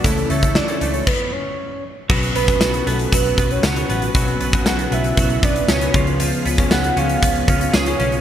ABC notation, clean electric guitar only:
X:1
M:4/4
L:1/16
Q:1/4=117
K:C#phr
V:1 name="Clean electric guitar"
E,2 A,2 E,2 A,2 z8 | F,2 B,2 F,2 B,2 F,2 B,2 C2 B,2 | F,2 B,2 F,2 B,2 F,2 B,2 C2 ^E,2 | ^E,2 B, C B,2 C2 B,2 C2 G2 C2 |]